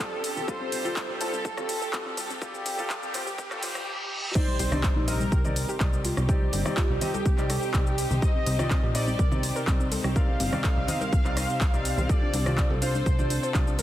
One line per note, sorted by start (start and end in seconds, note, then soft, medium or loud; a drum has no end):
0.00 0.32 C2 medium
0.00 0.19 C3 medium
0.00 3.83 C3 medium
0.00 0.19 C4 medium
0.00 0.44 C4 medium
0.00 0.44 D4 medium
0.00 0.19 F4 medium
0.00 3.83 F4 medium
0.00 3.83 G4 medium
0.00 0.50 A4 loud
0.00 0.19 D5 medium
0.00 0.39 D5 medium
0.00 riser medium
0.24 open hi-hat medium
0.24 shaker medium
0.37 0.46 C2 medium
0.37 low conga medium
0.37 shaker soft
0.48 0.82 C3 medium
0.48 0.82 G3 medium
0.48 3.83 C4 medium
0.48 0.82 F4 medium
0.48 0.57 G4 loud
0.48 3.83 A4 medium
0.48 0.82 A4 loud
0.48 1.11 C5 loud
0.48 kick loud
0.48 shaker soft
0.61 0.69 C4 medium
0.72 1.05 C2 medium
0.72 0.82 C4 medium
0.72 open hi-hat loud
0.72 shaker medium
0.85 1.18 C3 loud
0.85 1.18 G3 medium
0.85 0.93 F4 medium
0.85 1.18 F4 medium
0.85 1.18 A4 loud
0.85 low conga medium
0.85 shaker soft
0.96 1.06 C4 medium
0.96 kick loud
0.96 clap loud
0.96 shaker soft
1.09 1.41 C2 medium
1.09 1.18 G4 medium
1.21 1.33 C3 loud
1.21 1.33 G3 medium
1.21 1.30 C4 medium
1.21 1.33 F4 medium
1.21 1.84 A4 loud
1.21 1.33 C5 loud
1.21 open hi-hat medium
1.21 shaker medium
1.33 1.42 C4 medium
1.33 high conga medium
1.33 shaker soft
1.45 1.77 C2 loud
1.45 1.54 A4 medium
1.45 kick loud
1.45 shaker soft
1.57 1.69 C3 medium
1.57 1.69 G3 medium
1.57 1.66 C4 medium
1.57 1.69 F4 medium
1.57 1.69 A4 medium
1.57 cross-stick medium
1.57 low conga medium
1.57 shaker soft
1.69 1.78 C4 medium
1.69 open hi-hat loud
1.69 shaker medium
1.82 1.90 A4 loud
1.82 shaker soft
1.93 2.26 C2 medium
1.93 2.12 C3 medium
1.93 2.12 G3 medium
1.93 2.03 C4 medium
1.93 2.12 F4 medium
1.93 2.12 A4 medium
1.93 kick loud
1.93 clap loud
1.93 shaker soft
2.06 2.14 C4 medium
2.17 2.27 A4 medium
2.17 open hi-hat medium
2.17 high conga medium
2.17 shaker medium
2.30 2.62 C2 medium
2.30 2.39 C4 medium
2.30 shaker soft
2.42 2.75 C3 medium
2.42 2.75 G3 medium
2.42 2.75 F4 medium
2.42 4.26 G4 loud
2.42 2.51 A4 loud
2.42 2.75 A4 loud
2.42 kick loud
2.42 shaker soft
2.54 2.63 C4 medium
2.54 shaker soft
2.66 2.76 G1 loud
2.66 2.75 C4 medium
2.66 open hi-hat loud
2.66 shaker medium
2.78 3.11 C3 loud
2.78 3.11 G3 medium
2.78 2.87 C4 medium
2.78 3.11 F4 medium
2.78 3.11 A4 loud
2.78 low conga medium
2.78 shaker soft
2.90 2.99 A4 medium
2.90 kick loud
2.90 clap loud
2.90 shaker soft
3.03 3.12 C2 medium
3.03 3.11 C4 medium
3.03 shaker soft
3.14 3.26 C3 medium
3.14 3.26 G3 medium
3.14 3.23 C4 medium
3.14 3.26 F4 medium
3.14 3.26 C5 loud
3.14 open hi-hat medium
3.14 low conga medium
3.14 shaker medium
3.27 3.35 G4 loud
3.27 high conga medium
3.27 shaker soft
3.38 3.71 C2 loud
3.38 3.48 C4 medium
3.38 kick loud
3.38 reverse cymbal medium
3.38 shaker soft
3.51 3.60 C3 medium
3.51 3.60 G3 medium
3.51 3.60 C4 medium
3.51 3.60 F4 medium
3.51 3.60 A4 loud
3.51 cross-stick medium
3.51 clap soft
3.51 shaker soft
3.63 3.82 C3 medium
3.63 3.82 G3 medium
3.63 3.87 F4 medium
3.63 3.82 F4 medium
3.63 3.82 C5 medium
3.63 open hi-hat loud
3.63 high conga medium
3.63 shaker medium
3.75 cross-stick medium
3.75 shaker soft
4.35 13.82 C3 medium
4.35 4.69 C3 medium
4.35 13.82 C4 medium
4.35 4.69 C4 medium
4.35 12.05 D#4 medium
4.35 4.44 D#4 loud
4.35 4.69 D#4 medium
4.35 12.05 G4 medium
4.35 13.82 C5 medium
4.35 4.99 C5 loud
4.35 4.69 D5 loud
4.35 kick loud
4.35 crash loud
4.35 impact medium
4.35 shaker soft
4.48 4.56 G3 medium
4.59 4.92 C2 loud
4.59 4.69 G3 medium
4.59 open hi-hat loud
4.59 shaker medium
4.72 5.05 C3 loud
4.72 5.05 C4 medium
4.72 4.80 D4 medium
4.72 5.05 D#4 medium
4.72 5.05 D5 loud
4.72 cross-stick medium
4.72 low conga medium
4.72 shaker soft
4.83 4.93 G3 medium
4.83 kick loud
4.83 clap loud
4.83 shaker soft
4.96 5.28 A#1 medium
4.96 5.05 D#4 medium
5.08 5.20 C3 loud
5.08 5.17 G3 medium
5.08 5.20 C4 medium
5.08 5.20 D#4 medium
5.08 5.71 A#4 loud
5.08 5.20 D#5 loud
5.08 open hi-hat loud
5.08 shaker medium
5.20 5.29 G3 medium
5.20 high conga medium
5.20 shaker soft
5.32 5.65 C2 loud
5.32 5.41 G4 loud
5.32 kick loud
5.32 shaker soft
5.44 5.56 C3 medium
5.44 5.53 G3 medium
5.44 5.56 C4 medium
5.44 5.56 D#4 medium
5.44 5.56 D5 medium
5.44 low conga medium
5.44 shaker soft
5.56 5.65 G3 medium
5.56 open hi-hat loud
5.56 shaker medium
5.69 5.77 G4 loud
5.69 shaker soft
5.80 6.13 C2 medium
5.80 5.99 C3 medium
5.80 5.90 G3 medium
5.80 5.99 C4 medium
5.80 5.99 D#4 medium
5.80 5.99 D5 medium
5.80 kick loud
5.80 clap loud
5.80 shaker soft
5.93 6.01 G3 medium
5.93 shaker soft
6.04 6.14 F4 medium
6.04 open hi-hat medium
6.04 high conga medium
6.04 shaker medium
6.17 6.49 C2 medium
6.17 6.26 G3 medium
6.17 cross-stick medium
6.17 shaker soft
6.29 6.63 C3 medium
6.29 6.63 C4 medium
6.29 6.63 D#4 medium
6.29 8.13 G4 loud
6.29 6.38 G4 medium
6.29 6.63 D5 loud
6.29 kick loud
6.29 shaker soft
6.41 6.50 G3 medium
6.53 6.63 G1 loud
6.53 6.62 G3 medium
6.53 open hi-hat loud
6.53 shaker medium
6.65 6.99 C3 loud
6.65 6.74 G3 medium
6.65 6.99 C4 medium
6.65 6.99 D#4 medium
6.65 6.99 D5 loud
6.65 cross-stick medium
6.65 low conga medium
6.65 shaker soft
6.77 6.86 F4 loud
6.77 kick loud
6.77 clap loud
6.77 shaker soft
6.90 6.99 C2 medium
6.90 6.98 G3 medium
7.01 7.14 C3 loud
7.01 7.11 G3 medium
7.01 7.14 C4 medium
7.01 7.14 D#4 medium
7.01 7.14 D#5 loud
7.01 open hi-hat loud
7.01 low conga medium
7.01 shaker medium
7.14 7.22 A4 loud
7.14 high conga medium
7.14 shaker soft
7.26 7.58 C2 loud
7.26 7.35 G3 medium
7.26 kick loud
7.26 shaker soft
7.38 7.49 C3 medium
7.38 7.47 G3 medium
7.38 7.49 C4 medium
7.38 7.49 D#4 medium
7.38 7.49 D5 medium
7.38 clap soft
7.38 shaker soft
7.50 8.13 A4 medium
7.50 cross-stick medium
7.50 open hi-hat loud
7.50 high conga medium
7.50 shaker medium
7.63 shaker soft
7.74 8.06 C2 medium
7.74 7.93 C3 medium
7.74 7.93 C4 medium
7.74 7.93 D#4 medium
7.74 7.93 D5 medium
7.74 kick loud
7.74 clap loud
7.74 shaker soft
7.87 shaker soft
7.98 open hi-hat loud
7.98 shaker medium
8.10 8.20 C2 medium
8.10 low conga medium
8.10 shaker soft
8.22 8.56 C3 medium
8.22 8.56 C4 medium
8.22 8.56 D#4 medium
8.22 8.32 G4 loud
8.22 8.56 D#5 loud
8.22 8.86 D#5 loud
8.22 kick loud
8.22 shaker soft
8.35 8.43 C4 medium
8.46 8.79 C2 loud
8.46 8.56 C4 medium
8.46 open hi-hat loud
8.46 shaker medium
8.59 8.92 C3 loud
8.59 8.92 C4 medium
8.59 8.92 D#4 medium
8.59 8.68 F4 medium
8.59 8.92 D5 loud
8.59 cross-stick medium
8.59 low conga medium
8.59 shaker soft
8.70 8.80 C4 medium
8.70 kick loud
8.70 clap loud
8.70 shaker soft
8.83 9.15 A#1 medium
8.83 8.92 G4 medium
8.95 9.07 C3 loud
8.95 9.07 C4 medium
8.95 9.04 C4 medium
8.95 9.07 D#4 medium
8.95 9.58 D5 loud
8.95 9.07 D#5 loud
8.95 open hi-hat loud
8.95 shaker medium
9.08 9.16 C4 medium
9.08 high conga medium
9.08 shaker soft
9.19 9.52 C2 loud
9.19 9.28 A#4 medium
9.19 kick loud
9.19 shaker soft
9.31 9.43 C3 medium
9.31 9.43 C4 medium
9.31 9.40 C4 medium
9.31 9.43 D#4 medium
9.31 9.43 D5 loud
9.31 low conga loud
9.31 shaker soft
9.43 9.53 C4 medium
9.43 open hi-hat loud
9.43 shaker medium
9.56 9.64 A#4 loud
9.56 shaker soft
9.67 10.00 C2 medium
9.67 9.86 C3 medium
9.67 9.77 C4 medium
9.67 9.86 C4 medium
9.67 9.86 D#4 medium
9.67 9.86 D5 medium
9.67 kick loud
9.67 clap loud
9.67 shaker soft
9.80 9.89 C4 medium
9.80 shaker soft
9.92 10.01 A4 medium
9.92 open hi-hat medium
9.92 high conga medium
9.92 shaker medium
10.04 10.36 C2 medium
10.04 10.13 C4 medium
10.04 cross-stick medium
10.04 shaker soft
10.16 10.50 C3 medium
10.16 10.50 C4 medium
10.16 10.50 D#4 medium
10.16 10.25 A#4 medium
10.16 10.50 D5 loud
10.16 12.11 F5 loud
10.16 kick loud
10.16 shaker soft
10.28 10.37 C4 medium
10.40 10.50 G1 loud
10.40 10.49 C4 medium
10.40 open hi-hat loud
10.40 shaker medium
10.52 10.86 C3 loud
10.52 10.61 C4 medium
10.52 10.86 C4 medium
10.52 10.86 D#4 medium
10.52 10.86 D5 loud
10.52 cross-stick medium
10.52 high conga medium
10.52 low conga medium
10.52 shaker soft
10.64 10.73 A4 medium
10.64 kick loud
10.64 clap loud
10.64 shaker soft
10.77 10.86 C2 medium
10.77 10.85 C4 medium
10.88 11.01 C3 medium
10.88 11.01 C4 medium
10.88 10.98 C4 medium
10.88 11.01 D#4 medium
10.88 11.01 D#5 loud
10.88 open hi-hat loud
10.88 low conga loud
10.88 shaker medium
11.01 11.10 A#4 loud
11.01 high conga medium
11.01 shaker soft
11.13 11.45 C2 loud
11.13 11.22 C4 medium
11.13 kick loud
11.13 shaker soft
11.25 11.34 C3 medium
11.25 11.34 C4 medium
11.25 11.34 D#4 medium
11.25 11.34 D5 loud
11.25 clap soft
11.25 shaker soft
11.36 11.56 C3 medium
11.36 11.56 C4 medium
11.36 11.56 D#4 medium
11.36 12.00 C5 loud
11.36 11.56 D#5 medium
11.36 cross-stick medium
11.36 open hi-hat loud
11.36 high conga medium
11.36 shaker medium
11.50 shaker soft
11.61 11.94 C2 medium
11.61 kick loud
11.61 clap loud
11.61 shaker soft
11.74 12.07 C3 medium
11.74 12.07 C4 medium
11.74 12.07 D#4 medium
11.74 12.07 D5 loud
11.74 shaker soft
11.85 open hi-hat loud
11.85 shaker medium
11.97 12.07 C2 medium
11.97 low conga medium
11.97 shaker soft
12.09 12.43 C3 medium
12.09 12.43 C4 medium
12.09 12.43 F4 medium
12.09 13.82 F4 medium
12.09 12.19 A4 loud
12.09 13.82 A4 medium
12.09 12.43 D5 loud
12.09 12.73 D5 loud
12.09 kick loud
12.09 shaker soft
12.22 12.31 D4 medium
12.34 12.66 C2 loud
12.34 12.43 D4 medium
12.34 open hi-hat loud
12.34 shaker medium
12.46 12.79 C3 loud
12.46 12.79 C4 medium
12.46 12.79 F4 medium
12.46 12.55 G4 medium
12.46 12.79 D5 loud
12.46 cross-stick medium
12.46 low conga medium
12.46 shaker soft
12.58 12.67 D4 medium
12.58 kick loud
12.58 clap loud
12.58 shaker soft
12.70 13.02 C2 medium
12.70 12.79 A4 loud
12.82 12.94 C3 loud
12.82 12.94 C4 medium
12.82 12.91 D4 medium
12.82 12.94 F4 medium
12.82 13.45 C5 loud
12.82 12.94 F5 loud
12.82 open hi-hat medium
12.82 shaker medium
12.95 13.03 D4 medium
12.95 high conga medium
12.95 shaker soft
13.06 13.39 C2 loud
13.06 13.15 C5 loud
13.06 kick loud
13.06 shaker soft
13.19 13.30 C3 medium
13.19 13.30 C4 medium
13.19 13.27 D4 medium
13.19 13.30 F4 medium
13.19 13.30 D5 medium
13.19 low conga medium
13.19 shaker soft
13.30 13.40 D4 medium
13.30 open hi-hat loud
13.30 shaker medium
13.43 13.52 C5 loud
13.43 shaker soft
13.54 13.82 C2 medium
13.54 13.74 C3 medium
13.54 13.74 C4 medium
13.54 13.64 D4 medium
13.54 13.74 F4 medium
13.54 13.74 D5 medium
13.54 kick loud
13.54 clap loud
13.54 shaker soft
13.67 13.76 D4 medium
13.67 shaker soft
13.79 13.82 A#4 medium
13.79 open hi-hat medium
13.79 high conga medium
13.79 shaker medium